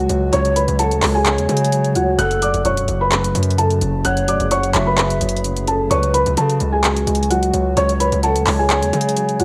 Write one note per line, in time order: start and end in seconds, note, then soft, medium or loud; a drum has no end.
0.00 0.33 C#3 medium
0.00 5.87 C#3 medium
0.00 1.72 F#3 loud
0.00 2.15 F#3 medium
0.00 1.03 G#3 loud
0.00 0.30 F#4 medium
0.00 4.01 F#4 medium
0.00 0.30 F#5 medium
0.09 0.32 C#2 loud
0.09 1.26 C#5 medium
0.09 closed hi-hat medium
0.33 0.67 C#2 loud
0.33 0.78 C#3 medium
0.33 0.77 C#5 loud
0.33 0.52 C#5 medium
0.33 0.52 C#6 medium
0.33 closed hi-hat medium
0.45 closed hi-hat medium
0.56 0.76 B4 medium
0.56 0.75 B5 medium
0.56 closed hi-hat medium
0.68 0.93 C#2 loud
0.68 closed hi-hat medium
0.79 1.24 C#3 medium
0.79 1.13 A4 medium
0.79 1.01 F#5 medium
0.79 1.13 A5 medium
0.79 closed hi-hat medium
0.91 1.02 D2 loud
0.91 closed hi-hat medium
1.02 1.39 C#2 loud
1.02 1.48 G#3 medium
1.02 2.15 C#5 loud
1.02 clap loud
1.02 open hi-hat medium
1.15 1.92 G#4 medium
1.15 1.92 G#5 medium
1.25 2.19 C#3 medium
1.25 clap loud
1.25 closed hi-hat medium
1.38 1.48 E2 loud
1.38 closed hi-hat medium
1.49 1.97 C#3 loud
1.49 2.19 G#3 medium
1.49 closed hi-hat medium
1.57 closed hi-hat medium
1.65 closed hi-hat medium
1.72 2.19 F#3 medium
1.72 closed hi-hat medium
1.84 closed hi-hat soft
1.95 2.18 D2 loud
1.95 2.15 F#4 medium
1.95 2.19 C#5 medium
1.95 2.15 F#5 medium
1.95 closed hi-hat medium
2.19 2.53 F#1 loud
2.19 2.64 F#2 medium
2.19 9.45 F#3 medium
2.19 5.87 A3 medium
2.19 2.63 A4 loud
2.19 2.38 F#5 medium
2.19 2.38 F#6 loud
2.19 closed hi-hat medium
2.31 closed hi-hat medium
2.42 2.87 F#3 medium
2.42 2.62 D5 medium
2.42 2.61 D6 medium
2.42 closed hi-hat medium
2.54 2.65 F#1 loud
2.54 closed hi-hat medium
2.65 2.88 E1 loud
2.65 3.11 F#2 medium
2.65 2.99 C#5 medium
2.65 2.99 C#6 medium
2.65 closed hi-hat medium
2.77 closed hi-hat medium
2.88 3.33 F#1 loud
2.88 3.34 F#3 medium
2.88 closed hi-hat medium
3.01 3.55 B4 medium
3.01 3.55 B5 medium
3.12 4.04 F#2 medium
3.12 clap loud
3.12 closed hi-hat medium
3.24 closed hi-hat medium
3.35 3.80 F#2 loud
3.35 4.27 F#3 medium
3.35 closed hi-hat medium
3.43 closed hi-hat medium
3.51 closed hi-hat soft
3.58 4.74 C#3 loud
3.58 4.02 A4 medium
3.58 4.02 A5 medium
3.58 closed hi-hat medium
3.71 closed hi-hat soft
3.81 4.04 F#1 loud
3.81 4.98 C#4 medium
3.81 closed hi-hat medium
4.05 4.30 F#1 loud
4.05 4.50 F#2 medium
4.05 5.89 G#4 medium
4.05 4.48 C#5 medium
4.05 4.24 F#5 medium
4.05 4.24 F#6 medium
4.05 closed hi-hat medium
4.17 closed hi-hat medium
4.28 4.40 E1 loud
4.28 4.73 F#3 medium
4.28 4.48 D5 medium
4.28 4.47 D6 medium
4.28 closed hi-hat medium
4.40 4.73 F#1 loud
4.40 closed hi-hat medium
4.51 4.97 F#2 medium
4.51 4.85 C#5 medium
4.51 4.73 F#5 medium
4.51 4.85 C#6 medium
4.51 closed hi-hat medium
4.63 closed hi-hat medium
4.74 5.19 F#1 loud
4.74 5.20 F#3 loud
4.74 5.40 E5 loud
4.74 clap loud
4.74 closed hi-hat medium
4.87 5.64 B4 medium
4.87 5.64 B5 medium
4.98 5.91 F#2 medium
4.98 clap loud
4.98 closed hi-hat medium
5.10 closed hi-hat medium
5.21 5.88 F#1 loud
5.21 5.91 F#3 medium
5.21 closed hi-hat medium
5.29 closed hi-hat medium
5.37 closed hi-hat soft
5.44 5.90 C#3 loud
5.44 closed hi-hat medium
5.57 closed hi-hat soft
5.67 5.91 C#4 medium
5.67 5.87 A4 medium
5.67 5.87 A5 medium
5.67 closed hi-hat medium
5.91 6.25 C#2 loud
5.91 6.36 C#3 medium
5.91 9.45 C#3 medium
5.91 9.45 F#4 medium
5.91 6.34 B4 loud
5.91 6.10 C#5 medium
5.91 6.10 C#6 medium
5.91 closed hi-hat medium
6.03 closed hi-hat medium
6.14 7.29 F#3 medium
6.14 6.34 B4 medium
6.14 6.33 B5 medium
6.14 closed hi-hat loud
6.26 6.37 C#2 loud
6.26 closed hi-hat medium
6.37 6.83 C#3 medium
6.37 6.60 C#3 loud
6.37 6.71 A4 medium
6.37 6.71 A5 medium
6.37 closed hi-hat medium
6.50 closed hi-hat medium
6.60 7.05 C#2 loud
6.60 7.06 G#3 loud
6.60 closed hi-hat medium
6.73 7.27 G#4 medium
6.73 7.27 G#5 medium
6.84 7.76 C#3 medium
6.84 clap loud
6.84 closed hi-hat medium
6.96 closed hi-hat medium
7.07 7.52 C#2 loud
7.07 8.24 G#3 medium
7.07 closed hi-hat medium
7.15 closed hi-hat medium
7.23 closed hi-hat soft
7.30 8.47 F#3 loud
7.30 7.75 F#4 medium
7.30 7.74 F#5 medium
7.30 closed hi-hat medium
7.43 closed hi-hat soft
7.54 7.76 C#2 loud
7.54 8.70 C#5 medium
7.54 closed hi-hat medium
7.77 8.11 C#2 loud
7.77 8.22 C#3 medium
7.77 8.21 C#5 loud
7.77 7.97 C#5 medium
7.77 7.96 C#6 medium
7.77 closed hi-hat medium
7.89 closed hi-hat medium
8.00 8.20 B4 medium
8.00 8.19 B5 medium
8.00 closed hi-hat medium
8.12 8.37 C#2 loud
8.12 closed hi-hat medium
8.23 8.68 C#3 medium
8.23 8.57 A4 medium
8.23 8.45 F#5 medium
8.23 8.57 A5 medium
8.23 closed hi-hat medium
8.36 8.46 D2 loud
8.36 closed hi-hat medium
8.46 8.84 C#2 loud
8.46 8.92 G#3 medium
8.46 9.45 C#5 loud
8.46 clap loud
8.46 open hi-hat medium
8.59 9.36 G#4 medium
8.59 9.36 G#5 medium
8.70 9.45 C#3 medium
8.70 clap loud
8.70 closed hi-hat medium
8.82 8.93 E2 loud
8.82 closed hi-hat medium
8.93 9.41 C#3 loud
8.93 9.45 G#3 medium
8.93 closed hi-hat medium
9.01 closed hi-hat medium
9.09 closed hi-hat medium
9.17 9.45 F#3 medium
9.17 closed hi-hat medium
9.29 closed hi-hat soft
9.40 9.45 D2 loud
9.40 9.45 F#4 medium
9.40 9.45 C#5 medium
9.40 9.45 F#5 medium
9.40 closed hi-hat medium